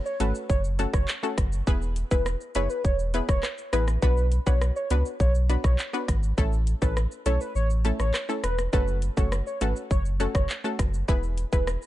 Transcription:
0.06 C#5, shaker
0.20 G#1 A3 C#4 F#4 A4 B4, closed hi-hat, shaker
0.35 shaker
0.50 F#1 C#5, kick, shaker
0.64 shaker
0.79 A3 C#4 F#4 A4, closed hi-hat, shaker
0.94 F#1 C#5, kick, cross-stick, shaker
1.08 clap, shaker
1.23 A3 C#4 F#4 A4, shaker
1.38 F#1, kick, cross-stick, closed hi-hat, shaker
1.52 shaker
1.67 E1 B3 E4 G#4 B4, kick, shaker
1.82 shaker
1.96 closed hi-hat, shaker
2.11 E1 B3 E4 G#4 B4, kick, shaker
2.26 cross-stick, shaker
2.41 shaker
2.55 F#1 B3 E4 G#4 B4 C#5, closed hi-hat, shaker
2.70 B4, shaker
2.84 E1 C#5, kick, shaker
2.99 shaker
3.14 B3 E4 G#4 B4, closed hi-hat, shaker
3.29 E1 C#5, kick, cross-stick, shaker
3.43 cross-stick, clap, shaker
3.58 shaker
3.73 A1 B3 E4 G#4 B4, cross-stick, closed hi-hat, shaker
3.88 cross-stick, shaker
4.02 B1 B3 D4 F#4 B4, kick, shaker
4.17 shaker
4.32 closed hi-hat, shaker
4.46 B1 B3 D4 F#4 B4 C#5, kick, shaker
4.62 cross-stick, shaker
4.76 C#5, shaker
4.90 C#2 B3 D4 F#4 B4, closed hi-hat, shaker
5.05 shaker
5.20 B1 C#5, kick, shaker
5.35 shaker
5.49 B3 D4 F#4 B4, closed hi-hat, shaker
5.64 B1 C#5, kick, cross-stick, shaker
5.79 clap, shaker
5.93 B3 D4 F#4 B4, shaker
6.08 G#1, kick, cross-stick, closed hi-hat, shaker
6.23 shaker
6.38 A1 A3 C#4 E4 A4, kick, shaker
6.53 shaker
6.67 closed hi-hat, shaker
6.82 A1 A3 C#4 E4 A4 B4, kick, shaker
6.97 cross-stick, shaker
7.12 shaker
7.26 B1 A3 C#4 E4 A4 C#5, closed hi-hat, shaker
7.41 B4, shaker
7.55 A1 C#5, shaker
7.70 shaker
7.85 A3 C#4 E4 A4, closed hi-hat, shaker
8.00 A1 C#5, cross-stick, shaker
8.14 cross-stick, clap, shaker
8.29 A3 C#4 E4 A4, shaker
8.44 E1 B4, cross-stick, closed hi-hat, shaker
8.58 cross-stick, shaker
8.73 F#1 A3 C#4 F#4 A4 B4, kick, shaker
8.88 shaker
9.02 closed hi-hat, shaker
9.17 F#1 A3 C#4 F#4 A4 C#5, kick, shaker
9.32 cross-stick, shaker
9.47 C#5, shaker
9.61 G#1 A3 C#4 F#4 A4 B4, closed hi-hat, shaker
9.76 shaker
9.91 F#1 C#5, kick, shaker
10.05 shaker
10.20 A3 C#4 F#4 A4, closed hi-hat, shaker
10.35 F#1 C#5, kick, cross-stick, shaker
10.49 clap, shaker
10.64 A3 C#4 F#4 A4, shaker
10.79 F#1, kick, cross-stick, closed hi-hat, shaker
10.94 shaker
11.08 E1 B3 E4 G#4 B4, kick, shaker
11.23 shaker
11.38 closed hi-hat, shaker
11.52 E1 B3 E4 G#4 B4, kick, shaker
11.67 cross-stick, shaker
11.82 shaker

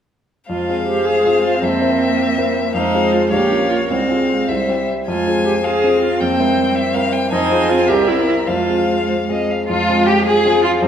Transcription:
0.49 F2 G#3 F4 C5 F5
0.69 C4 F4 G#4
0.88 G4
1.06 G#4
1.25 C4 F4 G#4
1.44 F4
1.62 F2 A#3 C4 E5
1.82 C4 E4 A#4
2.38 C4 E4 A#4
2.74 F2 G#3 D#4 C5 F5
2.94 C4 F4 G#4
3.13 F4
3.31 A#1 A#3 G4 C#5 F5
3.50 C#4 F4 A#4
3.69 F4
3.88 C2 G#3 C4 C5 F5
4.09 C4 F4 G#4
4.48 C2 G3 C5 E5
4.69 C4 E4 G4
5.07 F2 G#3 F4 C5 G#5
5.27 C4 F4 G#4
5.45 G4
5.64 C4 G#4 F5
5.84 C4 F4 G#4
6.01 F4
6.20 F2 A#3 C4 C5 G5
6.39 G#3 C4 E4 A#4
6.58 G3
6.75 E5
6.94 C4 E4 A#4 F5
7.13 G5
7.32 F2 C4 D#4 C5 G#5
7.51 C4 F4 G#4
7.69 F4
7.87 C2 G4 A#4 E5
8.08 C4 E4 A#4
8.28 E4
8.47 F2 G#3 F4 C5 F5
8.69 C4 F4 G#4
9.08 C5
9.29 C4 F4 G#4 D#5
9.51 F5
9.68 F2 G#3 F4
9.89 C4 F4 G#4
10.06 G4
10.25 F3 G#4
10.45 C4 F4 G#4
10.62 F4
10.81 F2 G3 C4

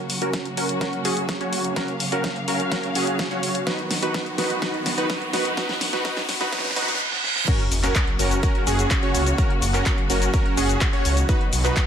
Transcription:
Already playing: C#3 F#3 A#3 F#4, riser
0.10 open hi-hat
0.22 C#4 F#4 A#4, closed hi-hat
0.33 kick, snare, closed hi-hat
0.45 closed hi-hat
0.57 C#4 F#4 A#4, open hi-hat
0.69 closed hi-hat
0.81 C#4 F#4 A#4, kick, snare, closed hi-hat
0.93 closed hi-hat
1.05 C#4 F#4 G#4, open hi-hat
1.17 closed hi-hat
1.29 kick, snare, closed hi-hat
1.41 C#4 F#4 C#5, closed hi-hat
1.53 open hi-hat
1.65 closed hi-hat
1.76 C#4 F#4 A#4 F5, kick, snare, closed hi-hat
1.88 closed hi-hat
2.00 open hi-hat
2.12 C#4 F#4 A#4, closed hi-hat
2.24 kick, snare, closed hi-hat
2.36 closed hi-hat
2.48 C#4 F#4 A#4, open hi-hat
2.60 closed hi-hat
2.72 C#4 F#4 A#4, kick, snare, closed hi-hat
2.84 closed hi-hat
2.95 C#4 F#4 G#4, open hi-hat
3.07 closed hi-hat
3.19 kick, snare, closed hi-hat
3.31 C#4 F#4 C#5, closed hi-hat
3.43 open hi-hat
3.55 closed hi-hat
3.67 D#3 B3 D#4 F#4 B4, kick, snare, closed hi-hat
3.79 closed hi-hat
3.91 snare, open hi-hat
4.03 D#4 F#4 B4, closed hi-hat
4.14 kick, snare, closed hi-hat
4.26 closed hi-hat
4.38 D#4 F#4 B4, snare, open hi-hat
4.50 closed hi-hat
4.62 D#4 F#4 B4, kick, snare, closed hi-hat
4.74 closed hi-hat
4.86 snare, open hi-hat
4.98 D#4 F#4 B4, closed hi-hat
5.10 kick, snare, closed hi-hat
5.22 closed hi-hat
5.33 D#4 F#4 B4, snare, open hi-hat
5.45 closed hi-hat
5.57 D#4 F#4 B4, kick, snare, closed hi-hat
5.69 snare, closed hi-hat
5.81 snare, open hi-hat
5.93 D#4 F#4 B4, snare, closed hi-hat
6.05 D#4 F#4 B4, kick, snare, closed hi-hat
6.17 snare, closed hi-hat
6.29 snare, open hi-hat
6.41 D#4 F#4 B4, snare, closed hi-hat
6.53 D#4 F#4 B4, kick, snare, closed hi-hat, reverse cymbal
6.59 snare
6.64 snare, closed hi-hat
6.70 snare
6.76 D#4 F#4 B4, snare, open hi-hat
6.82 snare
6.88 snare, closed hi-hat
6.94 snare
7.12 snare
7.24 snare
7.36 snare
7.48 C#3 F#3 A#3 C#4 F#4 A#4, kick, closed hi-hat, crash, sub drop, cabasa
7.60 closed hi-hat
7.72 F#1, open hi-hat, cabasa
7.83 C#4 F#4 A#4, clap, closed hi-hat, cabasa
7.95 kick, clap, closed hi-hat, cabasa
8.07 closed hi-hat
8.19 F#1 C#4 F#4 A#4, open hi-hat, cabasa
8.31 closed hi-hat, cabasa
8.43 C#4 F#4 A#4, kick, closed hi-hat, cabasa
8.55 closed hi-hat
8.67 F#1 C#4 F#4 G#4, open hi-hat, cabasa
8.79 closed hi-hat, cabasa
8.91 kick, clap, closed hi-hat, cabasa
9.03 C#4 F#4 C#5, closed hi-hat
9.15 C#2, open hi-hat, cabasa
9.26 closed hi-hat, cabasa
9.38 C#4 F#4 A#4, kick, closed hi-hat, cabasa
9.50 closed hi-hat
9.62 F#1, open hi-hat, cabasa
9.74 C#4 F#4 A#4, clap, closed hi-hat, cabasa
9.86 kick, clap, closed hi-hat, cabasa
9.98 closed hi-hat
10.10 F#1 C#4 F#4 A#4, open hi-hat, cabasa
10.22 closed hi-hat, cabasa
10.34 C#4 F#4 A#4, kick, closed hi-hat, cabasa
10.46 closed hi-hat
10.57 F#1 C#4 F#4 G#4, open hi-hat, cabasa
10.69 closed hi-hat, cabasa
10.81 kick, clap, closed hi-hat, cabasa
10.93 C#4 F#4 C#5, closed hi-hat
11.05 C#2, open hi-hat, cabasa
11.17 closed hi-hat, cabasa
11.29 D#3 B3 D#4 F#4 B4, kick, closed hi-hat, cabasa
11.41 closed hi-hat
11.53 B1, open hi-hat, cabasa
11.64 D#4 F#4 B4, clap, closed hi-hat, cabasa
11.76 kick, clap, closed hi-hat, cabasa

